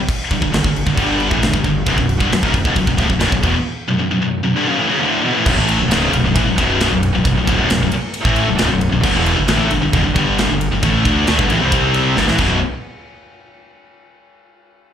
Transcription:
0.09 kick, crash
0.31 G1 G2 D3, kick, crash
0.42 G1 G2 D3, kick
0.52 G1 G2 D3, snare, crash
0.64 G1 G2 D3, kick
0.76 crash
0.87 G1 G2 D3, kick
0.97 G1 G2 D3 G3, kick, crash
1.20 crash
1.27 A1 A2, kick
1.32 A2 E3
1.42 G1 G2 D3, snare, crash
1.54 G1 G2 D3, kick
1.64 G1 G2 D3, kick, crash
1.86 B0 B1 F#2, kick, crash
1.98 B0 B1 F#2, kick
2.09 crash
2.20 G1 G2 D3, kick
2.30 B0 B1 F#2, snare, crash
2.43 B0 B1 F#2, kick
2.54 B0 B1 F#2, kick, crash
2.65 C#1 C#2 G#2, kick
2.76 B0 B1 F#2, kick, crash
2.87 B0 B1 F#2, kick
2.98 D1 D2 A2, kick, crash
3.09 B0 B1 F#2, kick
3.20 B0 B1 F#2, snare, crash
3.31 B0 B1 F#2, kick
3.43 E1 E2 B2, kick, crash
3.88 B1 F#2
3.99 B1 F#2
4.11 B1 F#2
4.22 B1 F#2
4.43 B1 F#2
4.56 G2 D3
4.67 F#2 C#3
4.80 A2 E3
4.91 F#2 C#3
5.02 D2 A2 D3
5.25 E2 B2
5.36 A2 E3
5.46 B0 B1 F#2, kick, crash
5.57 A1 A2 E3 A3
5.69 ride
5.79 B0 B1 F#2
5.89 C#1 C#2 G#2, snare, ride
5.93 C#3
6.12 B0 B1 F#2, ride
6.24 B0 B1 F#2
6.35 A1 A2 E3, kick, ride
6.47 B0 B1 F#2
6.58 B0 B1 F#2 B2, kick, ride
6.80 snare, ride
6.92 B0 B1 F#2
7.03 ride
7.15 B0 B1 F#2
7.25 B0 B1 F#2, kick, ride
7.36 B0 B1 F#2
7.45 D1 D2 A2, kick, ride
7.49 A2
7.56 B0 B1 F#2
7.61 F#2
7.69 B0 B1 F#2, snare, ride
7.77 B0 B1 F#2
7.83 B1 F#2
7.89 muted distorted electric guitar stroke, muted fingered electric bass stroke, ride
7.94 muted distorted electric guitar stroke
8.14 ride
8.21 A2 E3 A3
8.25 A1 A2 E3 A3, kick
8.36 ride
8.47 B0 B1 F#2
8.55 C#2 G#2, ride
8.59 C#1 C#2 G#2, snare
8.69 B0 B1 F#2
8.81 ride
8.92 B0 B1 F#2
9.03 G1 G2 D3, kick, crash
9.15 E1 E2 B2 E3
9.26 ride
9.38 G1 G2 D3
9.48 A1 A2 E3 A3, snare, ride
9.71 G1 G2 D3, ride
9.82 G1 G2 D3
9.93 E1 E2 B2, kick, ride
10.05 G1 G2 D3
10.16 G1 G2 D3 G3, kick, ride
10.38 snare, ride
10.50 G1 G2 D3
10.61 ride
10.72 G1 G2 D3
10.83 A1 A2 E3 A3, kick, ride
11.05 D2 D3 A3 D4, kick, ride
11.27 D2 D3 A3, snare, ride
11.38 G1 G2 D3, kick
11.49 A1 A2 E3, ride
11.60 C2 C3 G3 C4
11.72 kick, ride
11.94 ride
12.16 G1 G2 D3, snare
12.27 A1 A2 E3, snare
12.38 B0 B1 F#2 B2, kick, crash

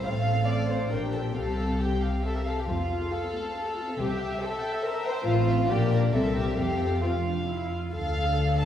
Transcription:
0.04 A1 A2 C4 A4 F5
0.48 D5
0.69 C5
0.91 A#1 A#2 D4 G4 A#4 G5
1.13 A4
1.35 C2 C3 C4 G4 A4 F5
1.80 C4 G4 G5
2.02 F5
2.24 C4 G4 A4 E5
2.36 A#4
2.47 A4 F5
2.58 G4
2.68 F1 F2 A3 C4 F4 F5
2.79 C4
2.90 F4
3.01 A4
3.11 F4 A4
3.23 C4
3.34 A3
3.44 C4
3.55 F4 A4
3.66 A4
3.77 F4
3.87 C4
3.98 C2 C3 G4 C5 E5
4.09 E5
4.19 G5
4.30 E5
4.40 A4 C5
4.51 E5
4.62 G5
4.72 E5
4.83 A#4 C5
4.94 E5
5.05 C5 G5
5.16 E5
5.26 A1 A2 C4 F4 C5 F5
5.48 E5
5.69 A#1 A#2 D4 G4 A#4 D5
5.91 A#4
6.13 C2 C3 C4 A4 A#4 E5
6.37 G4
6.58 F1 F2 C4 G4 A4 F5
7.03 C4 F4 F5
7.26 D4
7.49 E4
7.71 F4
7.94 D2 D3 A4 F5
8.60 A5

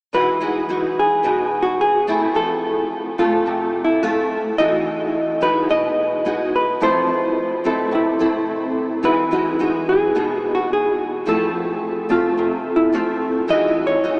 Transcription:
0.13 E3 G#3 D#4 F#4 B4
0.40 G#3 D#4 F#4
0.69 G#3 D#4 F#4
0.99 G#4
1.23 B2 G#3 D#4 F#4
1.62 F#4
1.81 G#4
2.07 A3 C4 E4
2.34 F3 A4
3.18 A3 C4 F4
3.46 C3
3.84 E4
4.03 A3 C4 F4
4.58 E3 G#3 D#4 F#4 D#5
5.41 G#3 D#4 F#4 B4
5.69 B2 D#5
6.25 G#3 D#4 F#4
6.56 B4
6.80 F3 A3 C4 E4 C5
7.64 A3 C4 E4 A4
7.91 C3 E4
8.19 A3 C4 E4
9.03 E3 G#3 D#4 F#4 B4
9.31 G#3 D#4 F#4
9.59 G#3 D#4 F#4
9.89 G#4
10.15 B2 G#3 D#4 F#4
10.55 F#4
10.73 G#4
11.26 F3 A3 C4 E4 A4
12.09 A3 C4 F4
12.38 C3
12.76 E4
12.93 A3 C4 F4
13.48 E3 G#3 D#4 F#4 D#5
13.87 C#5
14.04 G#3 D#4 F#4

